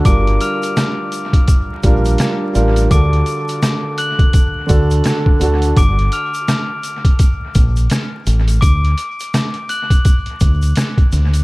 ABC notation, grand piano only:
X:1
M:4/4
L:1/8
Q:"Swing 16ths" 1/4=84
K:Gm
V:1 name="Grand piano"
[G,DFB]3 z2 [G,DFB] z [G,DFB] | [D,D^FA]3 z2 [D,DFA] z [D,DFA] | z8 | z8 |]